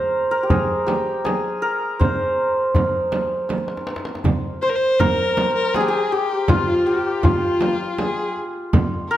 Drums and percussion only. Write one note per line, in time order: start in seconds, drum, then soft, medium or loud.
0.13 tombak ka soft
0.50 frame drum medium
0.50 tombak dum medium
0.88 tombak tek medium
0.88 frame drum medium
1.25 tombak tek medium
1.25 frame drum medium
2.01 frame drum medium
2.01 tombak dum medium
2.38 tombak ka soft
2.75 tombak dum medium
2.75 frame drum medium
3.12 tombak tek medium
3.12 frame drum medium
3.49 tombak tek medium
3.49 frame drum medium
3.58 tombak ka soft
3.68 tombak tek medium
3.77 tombak ka medium
3.87 tombak tek medium
3.96 tombak ka medium
4.05 tombak tek medium
4.15 tombak ka medium
4.24 tombak dum medium
4.24 frame drum medium
5.00 tombak dum medium
5.00 frame drum medium
5.37 tombak tek medium
5.37 frame drum medium
5.74 tombak tek medium
5.74 frame drum medium
6.12 tombak ka soft
6.48 frame drum medium
6.48 tombak dum loud
7.23 frame drum medium
7.23 tombak dum loud
7.61 tombak tek medium
7.61 frame drum medium
7.98 tombak tek medium
7.98 frame drum medium
8.37 tombak ka soft
8.73 frame drum medium
8.73 tombak dum medium